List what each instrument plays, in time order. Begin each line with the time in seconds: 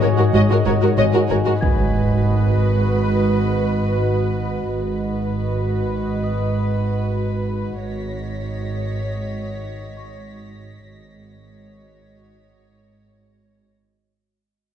Already playing: harp G#2, ambient pad F#4 C#5 D#5
0.01 double bass section G#1, cello section G#2, harp G#3, viola section F#4, violin section A#4 C#5
0.18 cello section G#2, viola section F#4, violin section F#4 A#4
0.33 double bass section G#1, harp G#2, cello section G#2, viola section F#4, violin section C#5 D#5
0.50 cello section G#2, viola section F#4, violin section F#4 A#4
0.66 double bass section G#1, harp G#2, cello section G#2, viola section F#4, violin section A#4 C#5
0.81 cello section G#2, viola section F#4, violin section F#4 A#4
0.98 double bass section G#1, cello section G#2, harp G#3, viola section F#4, violin section C#5 D#5
1.13 cello section G#2, viola section F#4, violin section F#4 A#4
1.29 double bass section G#1, cello section G#2, harp G#3, viola section F#4, violin section A#4 C#5
1.46 cello section G#2, viola section F#4, violin section F#4 A#4
1.61 double bass section G#1, cello section G#2, ambient pad F#4 B4 D#5, violin section B4, celesta G#5 G#6, impact
4.71 double bass section G#1, cello section G#2, ambient pad F#4 B4 D#5, violin section B4
6.24 celesta D#5 D#6
7.79 double bass section G#1, cello section G#2, ambient pad F#4 C#5 D#5, violin section C#5 A#6 B6
9.97 celesta C#6
10.87 double bass section G#1, cello section G#2, ambient pad F#4 C#5 D#5, violin section C#5